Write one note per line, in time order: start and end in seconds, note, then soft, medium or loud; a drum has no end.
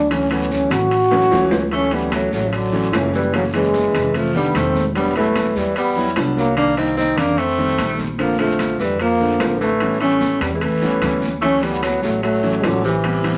0.00 0.65 D2 loud
0.00 0.13 D4 loud
0.10 0.25 E3 medium
0.10 0.25 F#3 medium
0.10 0.25 A3 medium
0.10 0.26 C#4 medium
0.10 0.31 C#4 medium
0.10 high conga soft
0.10 high timbale medium
0.10 long guiro medium
0.10 maracas loud
0.30 0.87 E3 medium
0.30 0.88 F#3 medium
0.30 0.88 A3 medium
0.30 0.54 B3 medium
0.30 0.88 C#4 medium
0.30 high timbale medium
0.30 maracas soft
0.51 0.73 C#4 medium
0.51 high conga medium
0.51 short guiro medium
0.51 maracas soft
0.71 1.28 A1 loud
0.71 1.62 F#4 loud
0.71 high conga medium
0.71 low conga medium
0.71 high timbale loud
0.71 short guiro medium
0.71 maracas medium
0.91 high timbale medium
0.91 long guiro medium
0.91 maracas medium
1.11 1.26 E3 medium
1.11 1.26 F#3 medium
1.11 1.26 A3 medium
1.11 1.26 C#4 loud
1.11 high timbale medium
1.11 maracas soft
1.31 2.27 D2 loud
1.31 1.60 E3 loud
1.31 1.60 F#3 loud
1.31 1.60 A3 medium
1.31 1.61 C#4 loud
1.31 high conga medium
1.31 low timbale medium
1.31 short guiro medium
1.31 maracas soft
1.51 high conga medium
1.51 low timbale medium
1.51 short guiro medium
1.51 maracas medium
1.71 1.86 E3 medium
1.71 1.87 F#3 medium
1.71 1.95 A3 medium
1.71 1.87 A3 medium
1.71 1.87 C#4 medium
1.71 1.95 C#4 medium
1.71 high conga soft
1.71 high timbale medium
1.71 long guiro medium
1.71 maracas medium
1.91 2.49 E3 medium
1.91 2.49 F#3 medium
1.91 2.14 G3 medium
1.91 2.49 A3 medium
1.91 2.13 B3 medium
1.91 2.50 C#4 medium
1.91 high conga soft
1.91 high timbale medium
2.12 2.33 F#3 medium
2.12 2.32 A3 medium
2.12 high conga loud
2.12 high timbale loud
2.12 short guiro medium
2.12 maracas medium
2.32 2.89 A1 medium
2.32 2.50 F#3 medium
2.32 2.48 A3 medium
2.32 short guiro medium
2.32 maracas soft
2.46 2.56 C#3 medium
2.46 2.56 F3 medium
2.53 2.96 D3 medium
2.53 2.96 F#3 medium
2.53 high conga soft
2.53 high timbale medium
2.53 long guiro medium
2.53 maracas medium
2.72 2.87 E3 medium
2.72 2.87 F#3 medium
2.72 2.88 A3 medium
2.72 2.88 C#4 medium
2.72 high conga soft
2.72 maracas medium
2.92 3.88 F#1 medium
2.92 3.14 C#3 medium
2.92 3.21 E3 medium
2.92 3.14 E3 medium
2.92 3.22 F#3 medium
2.92 3.22 A3 medium
2.92 3.22 C#4 loud
2.92 high conga medium
2.92 high timbale loud
2.92 low timbale medium
2.92 short guiro medium
2.92 maracas medium
3.13 3.33 E3 medium
3.13 3.33 G3 medium
3.13 high conga soft
3.13 short guiro medium
3.13 maracas soft
3.33 3.44 C#3 medium
3.33 3.48 E3 medium
3.33 3.44 F#3 medium
3.33 3.48 G#3 medium
3.33 3.48 A3 medium
3.33 3.48 C#4 medium
3.33 high timbale medium
3.33 long guiro medium
3.33 maracas medium
3.53 4.10 E3 medium
3.53 4.18 E3 medium
3.53 4.11 F#3 medium
3.53 4.11 G#3 medium
3.53 4.17 G#3 medium
3.53 4.11 C#4 medium
3.53 high timbale medium
3.74 high conga loud
3.74 short guiro medium
3.74 maracas medium
3.94 4.51 F1 medium
3.94 high conga soft
3.94 low conga medium
3.94 high timbale medium
3.94 short guiro medium
3.94 maracas soft
4.14 4.36 F3 medium
4.14 4.34 A3 medium
4.14 high conga soft
4.14 low conga medium
4.14 high timbale medium
4.14 long guiro medium
4.14 maracas medium
4.34 4.49 D#3 medium
4.34 4.49 G3 medium
4.34 4.57 G3 medium
4.34 4.49 A3 medium
4.34 4.59 B3 loud
4.34 4.50 D4 medium
4.34 high conga soft
4.54 5.50 E1 medium
4.54 4.83 D#3 medium
4.54 4.83 G3 medium
4.54 4.86 A3 medium
4.54 4.84 A3 medium
4.54 4.84 C4 medium
4.54 4.86 C4 loud
4.54 high conga medium
4.54 high timbale medium
4.54 short guiro medium
4.54 maracas medium
4.75 high conga medium
4.75 short guiro medium
4.75 maracas soft
4.95 5.09 F#3 medium
4.95 5.10 G3 medium
4.95 5.15 G3 medium
4.95 5.10 B3 medium
4.95 5.15 B3 medium
4.95 5.10 D4 medium
4.95 high conga soft
4.95 high timbale medium
4.95 long guiro medium
4.95 maracas medium
5.15 5.58 E3 medium
5.15 5.72 F#3 medium
5.15 5.72 G3 medium
5.15 5.58 A3 loud
5.15 5.73 B3 medium
5.15 5.73 E4 medium
5.15 high conga soft
5.15 high timbale medium
5.36 high conga loud
5.36 high timbale medium
5.36 short guiro medium
5.36 maracas medium
5.56 6.13 E2 medium
5.56 5.77 E3 medium
5.56 5.77 G3 medium
5.56 high conga soft
5.56 short guiro medium
5.56 maracas soft
5.76 6.08 G3 medium
5.76 6.08 B3 medium
5.76 high conga soft
5.76 high timbale medium
5.76 long guiro medium
5.76 maracas medium
5.96 6.11 F#3 medium
5.96 6.11 G3 medium
5.96 6.11 B3 medium
5.96 6.11 E4 loud
5.96 high conga soft
5.96 maracas medium
6.16 7.11 C2 medium
6.16 6.45 F#3 medium
6.16 6.45 G3 medium
6.16 6.45 B3 medium
6.16 6.45 D4 loud
6.16 high conga medium
6.16 high timbale loud
6.16 low timbale medium
6.16 short guiro medium
6.16 maracas medium
6.37 6.56 F#3 medium
6.37 6.56 A#3 loud
6.37 high conga soft
6.37 short guiro medium
6.37 maracas soft
6.56 6.71 D#3 medium
6.56 6.71 G3 medium
6.56 6.76 A#3 medium
6.56 6.71 A#3 medium
6.56 6.76 D4 loud
6.56 6.72 D4 medium
6.56 high timbale medium
6.56 long guiro medium
6.56 maracas medium
6.77 7.34 D#3 medium
6.77 7.34 G3 medium
6.77 7.34 A#3 medium
6.77 6.96 C4 medium
6.77 6.96 D#4 medium
6.77 7.35 F4 medium
6.77 high conga soft
6.77 high timbale medium
6.77 maracas medium
6.97 7.19 C4 medium
6.97 7.20 D#4 medium
6.97 high conga medium
6.97 short guiro medium
6.97 maracas medium
7.17 7.74 F2 medium
7.17 7.39 A#3 medium
7.17 7.40 D4 medium
7.17 high conga soft
7.17 low conga medium
7.17 high timbale medium
7.17 short guiro medium
7.17 maracas soft
7.38 7.99 A3 medium
7.38 7.99 C4 loud
7.38 high conga soft
7.38 high timbale medium
7.38 long guiro medium
7.38 maracas medium
7.58 7.72 D#3 medium
7.58 7.73 G3 medium
7.58 7.73 A3 medium
7.58 7.73 C4 medium
7.58 high conga soft
7.58 maracas medium
7.78 8.73 A#1 medium
7.78 8.07 D#3 medium
7.78 8.07 G3 medium
7.78 8.07 A3 medium
7.78 8.07 C4 medium
7.78 high conga medium
7.78 high timbale medium
7.78 short guiro medium
7.78 maracas medium
7.99 high conga medium
7.99 short guiro medium
7.99 maracas soft
8.18 8.33 D3 medium
8.18 8.33 F3 medium
8.18 8.38 F3 medium
8.18 8.33 A3 medium
8.18 8.38 A#3 medium
8.18 8.33 C4 medium
8.18 high conga soft
8.18 high timbale medium
8.18 long guiro medium
8.18 maracas medium
8.39 8.96 D3 medium
8.39 8.77 F3 medium
8.39 8.96 F3 medium
8.39 8.96 A3 medium
8.39 8.78 A3 medium
8.39 8.96 C4 medium
8.39 high conga soft
8.39 high timbale medium
8.59 high conga loud
8.59 high timbale medium
8.59 short guiro medium
8.59 maracas medium
8.79 9.36 F2 medium
8.79 8.99 E3 medium
8.79 9.00 G3 medium
8.79 high conga soft
8.79 short guiro medium
8.79 maracas soft
8.99 9.57 F3 medium
8.99 9.57 A#3 loud
8.99 high conga soft
8.99 high timbale medium
8.99 long guiro medium
8.99 maracas medium
9.20 9.34 D3 medium
9.20 9.34 F3 medium
9.20 9.35 A3 medium
9.20 9.35 D4 medium
9.20 high conga soft
9.20 maracas medium
9.39 10.35 A1 medium
9.39 9.68 D3 medium
9.39 9.68 F3 medium
9.39 9.69 A3 medium
9.39 9.69 C4 medium
9.39 high conga medium
9.39 high timbale loud
9.39 low timbale medium
9.39 short guiro medium
9.39 maracas medium
9.60 9.98 E3 medium
9.60 9.98 A3 loud
9.60 high conga soft
9.60 short guiro medium
9.60 maracas soft
9.80 9.95 E3 medium
9.80 9.95 G3 medium
9.80 9.95 B3 medium
9.80 9.95 C#4 medium
9.80 high timbale medium
9.80 long guiro medium
9.80 maracas medium
10.00 10.57 E3 medium
10.00 10.58 G3 medium
10.00 10.43 A3 medium
10.00 10.58 B3 medium
10.00 10.43 C#4 medium
10.00 10.58 C#4 medium
10.00 high conga soft
10.00 high timbale medium
10.20 high conga loud
10.20 short guiro medium
10.20 maracas medium
10.40 10.98 E2 medium
10.40 10.54 G3 medium
10.40 10.53 B3 medium
10.40 high conga soft
10.40 low conga medium
10.40 high timbale loud
10.40 short guiro medium
10.40 maracas soft
10.54 10.60 E3 medium
10.54 10.63 G#3 medium
10.60 11.22 E3 medium
10.60 11.22 A3 loud
10.60 high conga soft
10.60 low conga medium
10.60 high timbale medium
10.60 long guiro medium
10.60 maracas medium
10.82 10.96 E3 medium
10.82 10.96 G3 medium
10.82 10.96 B3 medium
10.82 10.97 C#4 medium
10.82 high conga soft
10.82 maracas medium
11.01 11.97 D2 medium
11.01 11.30 E3 medium
11.01 11.30 G3 medium
11.01 11.31 B3 medium
11.01 11.31 C#4 medium
11.01 high conga medium
11.01 high timbale loud
11.01 short guiro medium
11.01 maracas medium
11.22 high conga medium
11.22 short guiro medium
11.22 maracas soft
11.42 11.56 E3 medium
11.42 11.57 F#3 medium
11.42 11.63 A3 medium
11.42 11.57 A3 medium
11.42 11.65 C#4 medium
11.42 11.57 C#4 medium
11.42 high conga soft
11.42 high timbale medium
11.42 long guiro medium
11.42 maracas medium
11.62 12.19 E3 medium
11.62 12.19 F#3 medium
11.62 11.82 G3 medium
11.62 12.19 A3 medium
11.62 12.20 B3 medium
11.62 11.83 B3 medium
11.62 high conga soft
11.62 high timbale medium
11.62 maracas medium
11.82 12.01 F#3 medium
11.82 12.02 B3 medium
11.82 high conga medium
11.82 high timbale medium
11.82 short guiro medium
11.82 maracas medium
12.02 12.59 A1 medium
12.02 12.22 F#3 medium
12.02 12.23 A3 medium
12.02 high conga soft
12.02 short guiro medium
12.02 maracas soft
12.22 12.66 F#3 medium
12.22 12.67 A3 medium
12.22 high conga soft
12.22 high timbale medium
12.22 long guiro medium
12.22 maracas medium
12.43 12.58 E3 medium
12.43 12.58 F#3 medium
12.43 12.58 A3 medium
12.43 12.58 C#4 medium
12.43 high conga soft
12.43 maracas medium
12.63 13.38 A1 medium
12.63 12.84 D3 medium
12.63 12.92 E3 medium
12.63 12.92 F#3 medium
12.63 12.84 F#3 loud
12.63 12.92 A3 medium
12.63 12.93 C#4 medium
12.63 high conga medium
12.63 high timbale medium
12.63 low timbale medium
12.63 short guiro medium
12.63 maracas medium
12.84 13.38 C3 medium
12.84 13.38 E3 medium
12.84 high conga soft
12.84 short guiro medium
12.84 maracas soft
13.04 13.18 E3 medium
13.04 13.18 G3 medium
13.04 13.19 B3 medium
13.04 13.19 C4 medium
13.04 high conga soft
13.04 high timbale medium
13.04 long guiro medium
13.04 maracas medium
13.24 13.38 E3 medium
13.24 13.38 G3 medium
13.24 13.38 B3 medium
13.24 13.38 C4 medium
13.24 high conga soft
13.24 high timbale medium
13.24 maracas medium